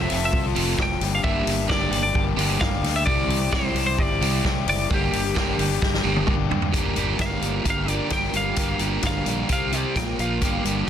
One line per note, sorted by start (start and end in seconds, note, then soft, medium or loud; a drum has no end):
0.00 0.16 C3 loud
0.00 0.31 F3 medium
0.00 0.16 A3 medium
0.00 0.17 C4 loud
0.00 1.00 F4 medium
0.00 1.00 C5 medium
0.00 0.24 E5 loud
0.00 0.97 A5 medium
0.00 0.99 C6 medium
0.09 0.30 F1 medium
0.09 0.32 C4 medium
0.09 0.32 F4 medium
0.09 0.33 A4 medium
0.09 open hi-hat medium
0.25 0.45 E5 medium
0.32 0.52 C2 loud
0.32 0.78 F3 medium
0.32 0.56 C4 medium
0.32 0.56 F4 loud
0.32 0.54 A4 loud
0.32 kick loud
0.56 0.76 F1 loud
0.56 0.85 C3 medium
0.56 0.85 F3 medium
0.56 0.85 A3 loud
0.56 0.79 C4 medium
0.56 0.80 F4 medium
0.56 0.80 A4 medium
0.56 open hi-hat medium
0.78 0.98 F1 medium
0.78 1.00 F3 medium
0.78 1.01 C4 medium
0.78 1.01 F4 medium
0.78 1.01 A4 loud
0.78 kick loud
0.78 snare loud
0.82 1.12 G5 loud
1.00 1.21 G1 loud
1.00 1.24 G2 medium
1.00 1.24 D3 medium
1.00 1.25 G3 medium
1.00 1.24 A#3 medium
1.00 1.25 D4 loud
1.00 3.05 G4 medium
1.00 1.26 G4 medium
1.00 3.05 A#4 medium
1.00 3.05 A5 medium
1.00 6.69 D6 medium
1.00 open hi-hat medium
1.15 1.23 F5 loud
1.24 1.44 G1 loud
1.24 1.93 G2 loud
1.24 1.93 D3 medium
1.24 1.69 G3 medium
1.24 1.68 A#3 loud
1.24 1.70 D4 loud
1.24 1.71 G4 loud
1.24 1.66 E5 loud
1.24 kick loud
1.46 1.67 G1 medium
1.46 open hi-hat loud
1.68 1.90 G1 loud
1.68 1.98 D3 medium
1.68 1.93 G3 medium
1.68 1.91 A#3 medium
1.68 1.91 D4 medium
1.68 1.90 G4 medium
1.68 2.02 D5 medium
1.68 kick loud
1.68 snare loud
1.91 2.12 G1 medium
1.91 2.13 G3 medium
1.91 2.13 A#3 medium
1.91 2.14 D4 medium
1.91 2.15 G4 medium
1.91 open hi-hat loud
2.03 2.25 D5 medium
2.13 2.35 G1 loud
2.13 2.60 G2 loud
2.13 2.60 D3 loud
2.13 2.38 G3 medium
2.13 2.37 A#3 medium
2.13 2.37 D4 medium
2.13 2.36 G4 loud
2.13 kick loud
2.36 2.57 G1 loud
2.36 2.68 D3 medium
2.36 2.59 G3 medium
2.36 2.59 A#3 medium
2.36 2.61 D4 medium
2.36 2.62 G4 medium
2.36 open hi-hat medium
2.60 2.81 G1 loud
2.60 3.06 G3 medium
2.60 3.05 A#3 medium
2.60 3.07 D4 medium
2.60 3.07 G4 loud
2.60 2.93 F5 loud
2.60 kick loud
2.60 snare loud
2.83 3.04 D2 loud
2.83 snare soft
2.83 open hi-hat medium
2.96 3.05 E5 loud
3.06 3.27 C2 loud
3.06 3.75 C3 loud
3.06 3.51 E3 loud
3.06 3.53 G3 loud
3.06 3.37 C4 medium
3.06 4.88 E4 medium
3.06 3.53 E4 loud
3.06 3.54 G4 loud
3.06 4.88 C5 medium
3.06 3.52 D5 loud
3.06 4.88 G5 medium
3.06 kick loud
3.28 3.49 C2 medium
3.28 open hi-hat medium
3.52 3.73 C2 loud
3.52 3.82 C3 medium
3.52 3.96 E3 medium
3.52 3.76 G3 medium
3.52 3.83 C4 loud
3.52 3.74 E4 medium
3.52 3.75 G4 medium
3.52 3.85 C5 loud
3.52 kick loud
3.52 snare loud
3.74 3.95 C2 medium
3.74 3.98 G3 medium
3.74 3.98 E4 medium
3.74 3.99 G4 medium
3.74 open hi-hat medium
3.87 4.00 C5 loud
3.97 4.19 G1 medium
3.97 4.44 C3 medium
3.97 4.42 E3 loud
3.97 4.23 G3 medium
3.97 4.21 E4 loud
3.97 4.21 G4 loud
3.97 4.68 D5 loud
3.97 kick loud
4.21 4.41 C2 loud
4.21 4.52 C3 medium
4.21 4.45 G3 medium
4.21 4.52 C4 medium
4.21 4.44 E4 medium
4.21 4.45 G4 medium
4.21 open hi-hat medium
4.44 4.65 C2 loud
4.44 4.88 E3 medium
4.44 4.89 G3 medium
4.44 4.89 E4 medium
4.44 4.90 G4 loud
4.44 kick loud
4.44 snare loud
4.66 4.87 F#1 loud
4.66 4.92 D5 loud
4.66 snare soft
4.66 open hi-hat medium
4.88 5.10 G1 loud
4.88 5.58 G2 medium
4.88 5.59 D3 loud
4.88 5.33 G3 loud
4.88 5.34 A#3 medium
4.88 5.35 D4 loud
4.88 5.35 G4 loud
4.88 6.73 G4 medium
4.88 6.71 A#4 medium
4.88 6.73 A5 medium
4.88 kick loud
4.94 6.26 G4 medium
5.13 5.33 G1 medium
5.13 open hi-hat medium
5.34 5.56 G1 loud
5.34 5.65 D3 medium
5.34 5.59 G3 medium
5.34 5.58 A#3 medium
5.34 5.58 D4 medium
5.34 5.57 G4 medium
5.34 kick loud
5.34 snare loud
5.58 5.79 G1 medium
5.58 5.80 G3 medium
5.58 5.80 A#3 medium
5.58 5.81 D4 medium
5.58 5.81 G4 medium
5.58 open hi-hat loud
5.80 6.02 G1 loud
5.80 6.27 G2 medium
5.80 6.27 D3 medium
5.80 6.04 G3 medium
5.80 6.03 A#3 medium
5.80 6.03 D4 medium
5.80 6.02 G4 loud
5.80 kick loud
5.80 snare medium
5.94 snare medium
6.04 6.25 G1 loud
6.04 6.35 D3 medium
6.04 6.25 G3 medium
6.04 6.26 A#3 medium
6.04 6.27 D4 medium
6.04 6.28 G4 medium
6.16 high tom medium
6.26 6.48 G1 loud
6.26 6.71 G3 medium
6.26 6.72 A#3 medium
6.26 6.71 D4 medium
6.26 6.72 G4 medium
6.26 kick loud
6.26 mid tom medium
6.50 6.70 G2 loud
6.50 floor tom loud
6.62 floor tom medium
6.71 6.90 G1 medium
6.71 6.94 G2 medium
6.71 6.95 D3 medium
6.71 6.95 G3 medium
6.71 6.96 A#3 medium
6.71 6.95 D4 medium
6.71 9.47 F4 medium
6.71 6.96 G4 medium
6.71 9.47 A#4 medium
6.71 6.95 A#4 medium
6.71 9.46 G5 medium
6.71 9.46 D6 medium
6.71 kick loud
6.71 closed hi-hat medium
6.96 7.13 G1 medium
6.96 7.16 G2 medium
6.96 7.16 D3 medium
6.96 7.17 G3 medium
6.96 7.17 A#3 medium
6.96 7.17 D4 medium
6.96 7.18 G4 medium
6.96 7.18 A#4 medium
6.96 closed hi-hat medium
7.17 7.36 G1 medium
7.17 7.39 G2 medium
7.17 7.40 D3 medium
7.17 7.39 G3 loud
7.17 7.41 A#3 loud
7.17 7.39 D4 medium
7.17 7.40 G4 loud
7.17 7.41 A#4 medium
7.17 kick loud
7.17 snare loud
7.17 closed hi-hat medium
7.22 7.65 F5 medium
7.40 7.59 G1 medium
7.40 7.62 G2 medium
7.40 7.63 D3 medium
7.40 7.63 G3 medium
7.40 7.64 A#3 medium
7.40 7.64 D4 medium
7.40 7.64 G4 medium
7.40 7.65 A#4 medium
7.40 closed hi-hat medium
7.64 7.99 G1 medium
7.64 7.86 G2 medium
7.64 7.86 D3 medium
7.64 7.86 G3 medium
7.64 7.87 A#3 medium
7.64 7.87 D4 medium
7.64 7.87 G4 medium
7.64 7.88 A#4 medium
7.64 kick loud
7.64 closed hi-hat medium
7.70 7.89 F5 medium
7.87 8.08 G2 medium
7.87 8.09 D3 loud
7.87 8.10 G3 medium
7.87 8.10 A#3 loud
7.87 8.10 D4 medium
7.87 8.10 G4 medium
7.87 8.11 A#4 loud
7.87 8.11 D5 medium
7.87 closed hi-hat medium
8.09 8.28 G1 medium
8.09 8.31 G2 medium
8.09 8.31 D3 medium
8.09 8.32 G3 medium
8.09 8.33 A#3 medium
8.09 8.33 D4 medium
8.09 8.34 G4 medium
8.09 8.34 A#4 medium
8.09 8.35 G5 medium
8.09 kick loud
8.09 snare loud
8.09 closed hi-hat medium
8.23 snare soft
8.32 8.51 G1 medium
8.32 8.55 G2 medium
8.32 8.55 D3 medium
8.32 8.56 G3 medium
8.32 8.56 A#3 medium
8.32 8.57 D4 medium
8.32 8.57 G4 medium
8.32 8.57 A#4 medium
8.32 closed hi-hat medium
8.37 8.81 F5 medium
8.56 8.74 G1 medium
8.56 8.77 G2 medium
8.56 8.78 D3 medium
8.56 8.79 G3 loud
8.56 8.79 A#3 loud
8.56 8.80 D4 loud
8.56 8.80 G4 loud
8.56 8.80 A#4 loud
8.56 kick loud
8.56 closed hi-hat loud
8.78 8.97 G1 medium
8.78 9.00 G2 medium
8.78 9.00 D3 medium
8.78 9.02 G3 medium
8.78 9.02 A#3 medium
8.78 9.03 D4 medium
8.78 9.03 G4 medium
8.78 9.04 A#4 medium
8.78 closed hi-hat medium
9.01 9.20 G1 medium
9.01 9.24 G2 medium
9.01 9.25 D3 medium
9.01 9.26 G3 medium
9.01 9.25 A#3 loud
9.01 9.26 D4 medium
9.01 9.26 G4 medium
9.01 9.27 A#4 medium
9.01 kick loud
9.01 snare loud
9.01 closed hi-hat medium
9.07 9.50 F5 medium
9.25 9.43 A#1 medium
9.25 9.48 G2 medium
9.25 9.48 D3 medium
9.25 9.49 G3 medium
9.25 9.49 A#3 medium
9.25 9.49 D4 medium
9.25 9.49 G4 medium
9.25 9.49 A#4 loud
9.25 closed hi-hat medium
9.49 9.83 C2 medium
9.49 9.72 C3 medium
9.49 9.72 G3 medium
9.49 9.72 C4 medium
9.49 9.73 G4 medium
9.49 9.96 G4 medium
9.49 9.96 C5 medium
9.49 9.77 F5 medium
9.49 9.96 C6 medium
9.49 9.96 G6 medium
9.49 kick loud
9.49 closed hi-hat loud
9.72 9.95 C3 medium
9.72 9.95 G3 loud
9.72 9.95 C4 loud
9.72 9.95 G4 loud
9.72 closed hi-hat medium
9.77 9.97 D5 medium
9.95 10.13 A#1 medium
9.95 10.18 A#2 loud
9.95 10.19 F3 loud
9.95 10.19 A#3 loud
9.95 10.90 F4 medium
9.95 10.20 F4 loud
9.95 10.41 A#4 medium
9.95 10.19 G5 medium
9.95 10.41 A#5 medium
9.95 10.42 F6 medium
9.95 kick loud
9.95 snare loud
9.95 closed hi-hat medium
10.19 10.41 A#1 medium
10.19 10.41 A#2 medium
10.19 10.41 F3 medium
10.19 10.42 A#3 medium
10.19 10.42 F4 medium
10.19 10.64 F5 medium
10.19 closed hi-hat medium
10.41 10.59 G1 loud
10.41 10.62 G2 medium
10.41 10.62 D3 loud
10.41 10.64 G3 loud
10.41 10.64 A#3 loud
10.41 10.64 D4 medium
10.41 10.65 G4 loud
10.41 10.90 A#4 medium
10.41 10.90 G5 medium
10.41 10.90 D6 medium
10.41 kick loud
10.41 closed hi-hat medium
10.64 10.82 G1 medium
10.64 10.84 G2 medium
10.64 10.85 D3 medium
10.64 10.86 G3 medium
10.64 10.86 A#3 medium
10.64 10.85 D4 medium
10.64 10.86 G4 medium
10.64 closed hi-hat medium
10.86 10.90 G2 medium
10.86 10.90 D3 medium
10.86 10.90 D4 medium